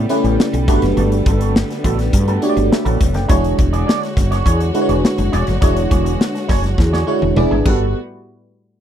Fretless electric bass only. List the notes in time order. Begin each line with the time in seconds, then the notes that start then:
0.24 A1
0.53 B1
0.68 G1
0.82 F#1
0.97 G1
1.26 G1
1.84 A1
2.13 G2
2.57 G1
2.85 A1
3.00 E1
3.15 F#1
3.29 E1
3.59 E1
4.17 F#1
4.46 E2
4.89 E1
5.18 F#1
5.33 E1
5.48 F#1
5.62 E1
5.91 E1
6.49 F#1
6.78 E2
7.22 E1
7.37 E1
7.51 G#1
7.66 G1